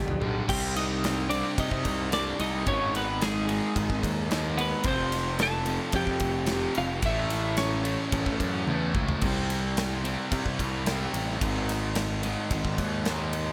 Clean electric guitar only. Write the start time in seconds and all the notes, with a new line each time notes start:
Already playing: G4
0.49 G4 G5
0.76 D#4 D#5
1.29 D4 D5
1.60 D#4 D#5
2.13 D4 D5
2.40 D#4 D#5
2.67 C#4 C#5
2.96 B3 B4
3.22 G#3 G#4
4.58 B3 B4
4.85 C4 C5
5.42 A4 A5
5.96 G4 G5
6.78 F4 F5
7.06 E4 E5
7.58 C#4 C#5